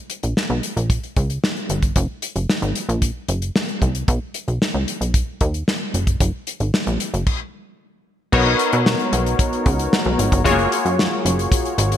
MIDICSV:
0, 0, Header, 1, 4, 480
1, 0, Start_track
1, 0, Tempo, 530973
1, 1770, Time_signature, 4, 2, 24, 8
1, 10821, End_track
2, 0, Start_track
2, 0, Title_t, "Analog polysynth"
2, 0, Program_c, 0, 90
2, 7524, Note_on_c, 0, 59, 85
2, 7528, Note_on_c, 0, 63, 66
2, 7530, Note_on_c, 0, 66, 74
2, 7535, Note_on_c, 0, 70, 73
2, 7537, Note_on_c, 0, 73, 97
2, 9411, Note_off_c, 0, 59, 0
2, 9413, Note_off_c, 0, 63, 0
2, 9414, Note_off_c, 0, 66, 0
2, 9416, Note_off_c, 0, 70, 0
2, 9417, Note_off_c, 0, 73, 0
2, 9441, Note_on_c, 0, 56, 66
2, 9444, Note_on_c, 0, 65, 70
2, 9449, Note_on_c, 0, 66, 67
2, 9452, Note_on_c, 0, 68, 77
2, 9456, Note_on_c, 0, 73, 97
2, 9498, Note_on_c, 0, 58, 88
2, 9503, Note_off_c, 0, 56, 0
2, 10821, Note_off_c, 0, 58, 0
2, 10821, Note_off_c, 0, 65, 0
2, 10821, Note_off_c, 0, 66, 0
2, 10821, Note_off_c, 0, 68, 0
2, 10821, Note_off_c, 0, 73, 0
2, 10821, End_track
3, 0, Start_track
3, 0, Title_t, "Analog synth bass"
3, 0, Program_c, 1, 38
3, 211, Note_on_c, 1, 34, 77
3, 312, Note_off_c, 1, 34, 0
3, 450, Note_on_c, 1, 35, 88
3, 551, Note_off_c, 1, 35, 0
3, 690, Note_on_c, 1, 34, 86
3, 893, Note_off_c, 1, 34, 0
3, 1054, Note_on_c, 1, 37, 88
3, 1255, Note_off_c, 1, 37, 0
3, 1533, Note_on_c, 1, 31, 86
3, 1735, Note_off_c, 1, 31, 0
3, 1771, Note_on_c, 1, 30, 114
3, 1872, Note_off_c, 1, 30, 0
3, 2130, Note_on_c, 1, 30, 79
3, 2231, Note_off_c, 1, 30, 0
3, 2369, Note_on_c, 1, 32, 96
3, 2471, Note_off_c, 1, 32, 0
3, 2609, Note_on_c, 1, 34, 96
3, 2812, Note_off_c, 1, 34, 0
3, 2970, Note_on_c, 1, 30, 83
3, 3173, Note_off_c, 1, 30, 0
3, 3451, Note_on_c, 1, 36, 83
3, 3653, Note_off_c, 1, 36, 0
3, 3689, Note_on_c, 1, 35, 109
3, 3791, Note_off_c, 1, 35, 0
3, 4047, Note_on_c, 1, 35, 78
3, 4150, Note_off_c, 1, 35, 0
3, 4287, Note_on_c, 1, 37, 86
3, 4390, Note_off_c, 1, 37, 0
3, 4527, Note_on_c, 1, 35, 83
3, 4731, Note_off_c, 1, 35, 0
3, 4891, Note_on_c, 1, 39, 96
3, 5093, Note_off_c, 1, 39, 0
3, 5369, Note_on_c, 1, 30, 81
3, 5572, Note_off_c, 1, 30, 0
3, 5609, Note_on_c, 1, 30, 88
3, 5711, Note_off_c, 1, 30, 0
3, 5968, Note_on_c, 1, 32, 78
3, 6070, Note_off_c, 1, 32, 0
3, 6209, Note_on_c, 1, 34, 101
3, 6311, Note_off_c, 1, 34, 0
3, 6450, Note_on_c, 1, 30, 90
3, 6552, Note_off_c, 1, 30, 0
3, 7529, Note_on_c, 1, 35, 108
3, 7732, Note_off_c, 1, 35, 0
3, 7892, Note_on_c, 1, 47, 104
3, 8094, Note_off_c, 1, 47, 0
3, 8251, Note_on_c, 1, 35, 105
3, 8453, Note_off_c, 1, 35, 0
3, 8732, Note_on_c, 1, 37, 98
3, 8934, Note_off_c, 1, 37, 0
3, 9091, Note_on_c, 1, 35, 94
3, 9192, Note_off_c, 1, 35, 0
3, 9211, Note_on_c, 1, 32, 91
3, 9312, Note_off_c, 1, 32, 0
3, 9330, Note_on_c, 1, 31, 106
3, 9431, Note_off_c, 1, 31, 0
3, 9451, Note_on_c, 1, 30, 101
3, 9653, Note_off_c, 1, 30, 0
3, 9811, Note_on_c, 1, 42, 82
3, 10013, Note_off_c, 1, 42, 0
3, 10171, Note_on_c, 1, 30, 92
3, 10373, Note_off_c, 1, 30, 0
3, 10649, Note_on_c, 1, 32, 100
3, 10821, Note_off_c, 1, 32, 0
3, 10821, End_track
4, 0, Start_track
4, 0, Title_t, "Drums"
4, 88, Note_on_c, 9, 42, 76
4, 178, Note_off_c, 9, 42, 0
4, 209, Note_on_c, 9, 42, 45
4, 299, Note_off_c, 9, 42, 0
4, 334, Note_on_c, 9, 38, 92
4, 425, Note_off_c, 9, 38, 0
4, 572, Note_on_c, 9, 42, 69
4, 662, Note_off_c, 9, 42, 0
4, 696, Note_on_c, 9, 42, 48
4, 787, Note_off_c, 9, 42, 0
4, 812, Note_on_c, 9, 36, 104
4, 812, Note_on_c, 9, 42, 74
4, 902, Note_off_c, 9, 36, 0
4, 903, Note_off_c, 9, 42, 0
4, 935, Note_on_c, 9, 42, 35
4, 1025, Note_off_c, 9, 42, 0
4, 1053, Note_on_c, 9, 42, 78
4, 1054, Note_on_c, 9, 36, 91
4, 1143, Note_off_c, 9, 42, 0
4, 1144, Note_off_c, 9, 36, 0
4, 1174, Note_on_c, 9, 42, 46
4, 1264, Note_off_c, 9, 42, 0
4, 1299, Note_on_c, 9, 38, 104
4, 1389, Note_off_c, 9, 38, 0
4, 1415, Note_on_c, 9, 42, 29
4, 1505, Note_off_c, 9, 42, 0
4, 1532, Note_on_c, 9, 42, 60
4, 1623, Note_off_c, 9, 42, 0
4, 1650, Note_on_c, 9, 36, 92
4, 1650, Note_on_c, 9, 42, 57
4, 1741, Note_off_c, 9, 36, 0
4, 1741, Note_off_c, 9, 42, 0
4, 1770, Note_on_c, 9, 42, 93
4, 1771, Note_on_c, 9, 36, 103
4, 1860, Note_off_c, 9, 42, 0
4, 1861, Note_off_c, 9, 36, 0
4, 2009, Note_on_c, 9, 42, 84
4, 2099, Note_off_c, 9, 42, 0
4, 2131, Note_on_c, 9, 42, 38
4, 2221, Note_off_c, 9, 42, 0
4, 2256, Note_on_c, 9, 38, 102
4, 2346, Note_off_c, 9, 38, 0
4, 2371, Note_on_c, 9, 42, 33
4, 2461, Note_off_c, 9, 42, 0
4, 2490, Note_on_c, 9, 42, 78
4, 2581, Note_off_c, 9, 42, 0
4, 2615, Note_on_c, 9, 42, 42
4, 2705, Note_off_c, 9, 42, 0
4, 2729, Note_on_c, 9, 42, 93
4, 2730, Note_on_c, 9, 36, 94
4, 2820, Note_off_c, 9, 36, 0
4, 2820, Note_off_c, 9, 42, 0
4, 2969, Note_on_c, 9, 42, 71
4, 3060, Note_off_c, 9, 42, 0
4, 3091, Note_on_c, 9, 42, 42
4, 3182, Note_off_c, 9, 42, 0
4, 3215, Note_on_c, 9, 38, 112
4, 3305, Note_off_c, 9, 38, 0
4, 3332, Note_on_c, 9, 42, 28
4, 3422, Note_off_c, 9, 42, 0
4, 3451, Note_on_c, 9, 36, 80
4, 3453, Note_on_c, 9, 42, 61
4, 3541, Note_off_c, 9, 36, 0
4, 3544, Note_off_c, 9, 42, 0
4, 3569, Note_on_c, 9, 42, 57
4, 3659, Note_off_c, 9, 42, 0
4, 3689, Note_on_c, 9, 36, 117
4, 3689, Note_on_c, 9, 42, 90
4, 3779, Note_off_c, 9, 36, 0
4, 3779, Note_off_c, 9, 42, 0
4, 3926, Note_on_c, 9, 42, 77
4, 4017, Note_off_c, 9, 42, 0
4, 4050, Note_on_c, 9, 42, 36
4, 4140, Note_off_c, 9, 42, 0
4, 4174, Note_on_c, 9, 38, 99
4, 4265, Note_off_c, 9, 38, 0
4, 4411, Note_on_c, 9, 42, 76
4, 4501, Note_off_c, 9, 42, 0
4, 4534, Note_on_c, 9, 42, 48
4, 4624, Note_off_c, 9, 42, 0
4, 4647, Note_on_c, 9, 42, 86
4, 4648, Note_on_c, 9, 36, 104
4, 4738, Note_off_c, 9, 36, 0
4, 4738, Note_off_c, 9, 42, 0
4, 4887, Note_on_c, 9, 42, 70
4, 4890, Note_on_c, 9, 36, 84
4, 4978, Note_off_c, 9, 42, 0
4, 4981, Note_off_c, 9, 36, 0
4, 5010, Note_on_c, 9, 42, 40
4, 5100, Note_off_c, 9, 42, 0
4, 5133, Note_on_c, 9, 38, 95
4, 5223, Note_off_c, 9, 38, 0
4, 5372, Note_on_c, 9, 42, 54
4, 5462, Note_off_c, 9, 42, 0
4, 5488, Note_on_c, 9, 36, 106
4, 5489, Note_on_c, 9, 42, 53
4, 5579, Note_off_c, 9, 36, 0
4, 5579, Note_off_c, 9, 42, 0
4, 5609, Note_on_c, 9, 36, 108
4, 5609, Note_on_c, 9, 42, 94
4, 5700, Note_off_c, 9, 36, 0
4, 5700, Note_off_c, 9, 42, 0
4, 5848, Note_on_c, 9, 42, 76
4, 5939, Note_off_c, 9, 42, 0
4, 5968, Note_on_c, 9, 42, 37
4, 6059, Note_off_c, 9, 42, 0
4, 6092, Note_on_c, 9, 38, 112
4, 6182, Note_off_c, 9, 38, 0
4, 6210, Note_on_c, 9, 42, 33
4, 6300, Note_off_c, 9, 42, 0
4, 6329, Note_on_c, 9, 42, 83
4, 6420, Note_off_c, 9, 42, 0
4, 6454, Note_on_c, 9, 42, 47
4, 6544, Note_off_c, 9, 42, 0
4, 6568, Note_on_c, 9, 49, 80
4, 6569, Note_on_c, 9, 36, 103
4, 6659, Note_off_c, 9, 49, 0
4, 6660, Note_off_c, 9, 36, 0
4, 7528, Note_on_c, 9, 49, 117
4, 7529, Note_on_c, 9, 36, 122
4, 7618, Note_off_c, 9, 49, 0
4, 7620, Note_off_c, 9, 36, 0
4, 7768, Note_on_c, 9, 42, 90
4, 7859, Note_off_c, 9, 42, 0
4, 7888, Note_on_c, 9, 42, 45
4, 7979, Note_off_c, 9, 42, 0
4, 8012, Note_on_c, 9, 38, 115
4, 8103, Note_off_c, 9, 38, 0
4, 8131, Note_on_c, 9, 42, 34
4, 8222, Note_off_c, 9, 42, 0
4, 8251, Note_on_c, 9, 42, 85
4, 8342, Note_off_c, 9, 42, 0
4, 8375, Note_on_c, 9, 42, 51
4, 8465, Note_off_c, 9, 42, 0
4, 8490, Note_on_c, 9, 36, 109
4, 8490, Note_on_c, 9, 42, 97
4, 8580, Note_off_c, 9, 36, 0
4, 8581, Note_off_c, 9, 42, 0
4, 8613, Note_on_c, 9, 42, 34
4, 8704, Note_off_c, 9, 42, 0
4, 8731, Note_on_c, 9, 42, 88
4, 8732, Note_on_c, 9, 36, 104
4, 8821, Note_off_c, 9, 42, 0
4, 8823, Note_off_c, 9, 36, 0
4, 8854, Note_on_c, 9, 42, 55
4, 8944, Note_off_c, 9, 42, 0
4, 8976, Note_on_c, 9, 38, 123
4, 9066, Note_off_c, 9, 38, 0
4, 9213, Note_on_c, 9, 42, 68
4, 9303, Note_off_c, 9, 42, 0
4, 9330, Note_on_c, 9, 36, 103
4, 9331, Note_on_c, 9, 42, 66
4, 9421, Note_off_c, 9, 36, 0
4, 9422, Note_off_c, 9, 42, 0
4, 9451, Note_on_c, 9, 36, 118
4, 9453, Note_on_c, 9, 42, 109
4, 9541, Note_off_c, 9, 36, 0
4, 9543, Note_off_c, 9, 42, 0
4, 9572, Note_on_c, 9, 42, 41
4, 9662, Note_off_c, 9, 42, 0
4, 9692, Note_on_c, 9, 42, 82
4, 9782, Note_off_c, 9, 42, 0
4, 9814, Note_on_c, 9, 42, 42
4, 9904, Note_off_c, 9, 42, 0
4, 9938, Note_on_c, 9, 38, 121
4, 10028, Note_off_c, 9, 38, 0
4, 10176, Note_on_c, 9, 42, 84
4, 10266, Note_off_c, 9, 42, 0
4, 10299, Note_on_c, 9, 42, 49
4, 10389, Note_off_c, 9, 42, 0
4, 10411, Note_on_c, 9, 36, 122
4, 10413, Note_on_c, 9, 42, 106
4, 10501, Note_off_c, 9, 36, 0
4, 10503, Note_off_c, 9, 42, 0
4, 10534, Note_on_c, 9, 42, 36
4, 10625, Note_off_c, 9, 42, 0
4, 10651, Note_on_c, 9, 42, 83
4, 10742, Note_off_c, 9, 42, 0
4, 10774, Note_on_c, 9, 42, 52
4, 10821, Note_off_c, 9, 42, 0
4, 10821, End_track
0, 0, End_of_file